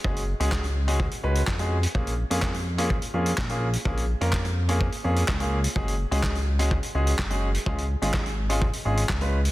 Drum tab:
HH |-x-x-x-x-x-x-x-x|-x-x-x-x-x-x-x-x|-x-x-x-x-x-x-x-x|-x-x-x-x-x-x-x-x|
CP |----x-------x---|----x-------x---|----x-------x---|----x-------x---|
SD |----o-------o---|----o-------o---|----o-------o---|----o-------o---|
BD |o---o---o---o---|o---o---o---o---|o---o---o---o---|o---o---o---o---|

HH |-x-x-x-x-x-x-x-x|
CP |----x-------x---|
SD |----o-------o---|
BD |o---o---o---o---|